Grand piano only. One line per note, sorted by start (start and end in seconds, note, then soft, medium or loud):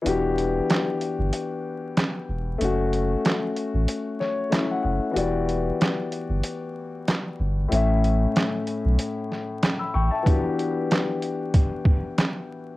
0.02 2.55 E3 medium
0.02 2.56 B3 medium
0.02 2.56 D4 medium
0.06 2.57 F#4 medium
0.06 2.58 G4 medium
2.58 4.47 A3 medium
2.58 4.48 C#4 medium
2.64 4.50 F#4 medium
4.20 4.50 C#5 medium
4.50 5.15 A3 medium
4.50 5.15 C#4 medium
4.50 5.16 E4 medium
4.50 4.68 E5 medium
4.71 4.81 F#5 medium
4.83 5.13 F#5 medium
5.11 7.65 E3 medium
5.11 7.65 B3 medium
5.11 7.66 F#4 medium
5.16 7.67 G4 medium
5.16 7.68 D5 medium
7.68 10.21 A2 medium
7.68 10.22 A3 medium
7.68 10.23 C#4 medium
7.73 10.23 E4 medium
7.73 9.60 E5 medium
9.79 9.94 B5 medium
9.79 9.93 E6 medium
9.94 10.11 G5 medium
9.94 10.11 C#6 medium
10.11 10.42 E5 medium
10.11 10.42 A5 medium
10.23 12.76 E3 medium
10.23 12.77 B3 medium
10.23 12.77 D4 medium
10.27 12.77 F#4 medium
10.27 12.77 G4 medium